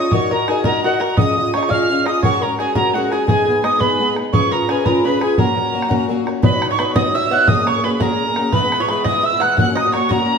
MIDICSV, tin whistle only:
0, 0, Header, 1, 2, 480
1, 0, Start_track
1, 0, Key_signature, 6, "major"
1, 0, Tempo, 350058
1, 167, Time_signature, 6, 3, 24, 8
1, 8822, Key_signature, 5, "major"
1, 14233, End_track
2, 0, Start_track
2, 0, Title_t, "Tin whistle"
2, 0, Program_c, 0, 75
2, 0, Note_on_c, 0, 87, 97
2, 176, Note_on_c, 0, 85, 109
2, 196, Note_off_c, 0, 87, 0
2, 429, Note_off_c, 0, 85, 0
2, 437, Note_on_c, 0, 82, 92
2, 666, Note_on_c, 0, 80, 85
2, 687, Note_off_c, 0, 82, 0
2, 883, Note_off_c, 0, 80, 0
2, 892, Note_on_c, 0, 82, 110
2, 1135, Note_off_c, 0, 82, 0
2, 1152, Note_on_c, 0, 78, 90
2, 1388, Note_on_c, 0, 82, 89
2, 1409, Note_off_c, 0, 78, 0
2, 1609, Note_on_c, 0, 87, 104
2, 1630, Note_off_c, 0, 82, 0
2, 2093, Note_off_c, 0, 87, 0
2, 2101, Note_on_c, 0, 85, 99
2, 2331, Note_on_c, 0, 89, 111
2, 2352, Note_off_c, 0, 85, 0
2, 2826, Note_on_c, 0, 87, 89
2, 2847, Note_off_c, 0, 89, 0
2, 3053, Note_off_c, 0, 87, 0
2, 3061, Note_on_c, 0, 85, 106
2, 3322, Note_on_c, 0, 82, 95
2, 3343, Note_off_c, 0, 85, 0
2, 3528, Note_off_c, 0, 82, 0
2, 3536, Note_on_c, 0, 80, 88
2, 3755, Note_off_c, 0, 80, 0
2, 3772, Note_on_c, 0, 82, 112
2, 4029, Note_on_c, 0, 78, 92
2, 4049, Note_off_c, 0, 82, 0
2, 4256, Note_on_c, 0, 80, 82
2, 4277, Note_off_c, 0, 78, 0
2, 4478, Note_off_c, 0, 80, 0
2, 4486, Note_on_c, 0, 80, 99
2, 4949, Note_off_c, 0, 80, 0
2, 4983, Note_on_c, 0, 87, 103
2, 5211, Note_on_c, 0, 83, 121
2, 5231, Note_off_c, 0, 87, 0
2, 5611, Note_off_c, 0, 83, 0
2, 5934, Note_on_c, 0, 85, 112
2, 6205, Note_on_c, 0, 82, 98
2, 6225, Note_off_c, 0, 85, 0
2, 6441, Note_on_c, 0, 80, 90
2, 6462, Note_off_c, 0, 82, 0
2, 6655, Note_on_c, 0, 82, 102
2, 6676, Note_off_c, 0, 80, 0
2, 6923, Note_on_c, 0, 83, 91
2, 6943, Note_off_c, 0, 82, 0
2, 7152, Note_off_c, 0, 83, 0
2, 7159, Note_on_c, 0, 80, 73
2, 7370, Note_off_c, 0, 80, 0
2, 7385, Note_on_c, 0, 82, 92
2, 8311, Note_off_c, 0, 82, 0
2, 8830, Note_on_c, 0, 83, 103
2, 9176, Note_off_c, 0, 83, 0
2, 9195, Note_on_c, 0, 85, 97
2, 9307, Note_on_c, 0, 83, 92
2, 9327, Note_off_c, 0, 85, 0
2, 9522, Note_off_c, 0, 83, 0
2, 9530, Note_on_c, 0, 87, 115
2, 9798, Note_on_c, 0, 88, 99
2, 9818, Note_off_c, 0, 87, 0
2, 10026, Note_off_c, 0, 88, 0
2, 10034, Note_on_c, 0, 90, 96
2, 10258, Note_on_c, 0, 87, 115
2, 10278, Note_off_c, 0, 90, 0
2, 10523, Note_on_c, 0, 85, 109
2, 10543, Note_off_c, 0, 87, 0
2, 10756, Note_on_c, 0, 83, 85
2, 10776, Note_off_c, 0, 85, 0
2, 10879, Note_off_c, 0, 83, 0
2, 10887, Note_on_c, 0, 83, 67
2, 10988, Note_on_c, 0, 82, 116
2, 11009, Note_off_c, 0, 83, 0
2, 11710, Note_on_c, 0, 83, 107
2, 11730, Note_off_c, 0, 82, 0
2, 12092, Note_on_c, 0, 85, 88
2, 12113, Note_off_c, 0, 83, 0
2, 12204, Note_on_c, 0, 83, 90
2, 12225, Note_off_c, 0, 85, 0
2, 12425, Note_off_c, 0, 83, 0
2, 12435, Note_on_c, 0, 87, 127
2, 12689, Note_on_c, 0, 88, 102
2, 12709, Note_off_c, 0, 87, 0
2, 12918, Note_on_c, 0, 90, 91
2, 12939, Note_off_c, 0, 88, 0
2, 13141, Note_off_c, 0, 90, 0
2, 13151, Note_on_c, 0, 90, 104
2, 13386, Note_off_c, 0, 90, 0
2, 13416, Note_on_c, 0, 87, 99
2, 13619, Note_off_c, 0, 87, 0
2, 13636, Note_on_c, 0, 85, 91
2, 13868, Note_on_c, 0, 82, 109
2, 13889, Note_off_c, 0, 85, 0
2, 14233, Note_off_c, 0, 82, 0
2, 14233, End_track
0, 0, End_of_file